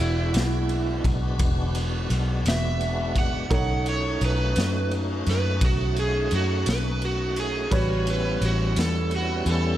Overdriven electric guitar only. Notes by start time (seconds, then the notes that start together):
Already playing: E4
2.48 E5
3.19 F#5
3.55 F#5
3.89 C#5
4.25 B4
5.31 B4
5.64 F#4
5.99 G#4
6.35 F#4
6.69 B4
7.05 F#4
7.39 G#4
7.76 F#4
8.10 B4
8.45 F#4
8.80 A4
9.16 F#4
9.50 A4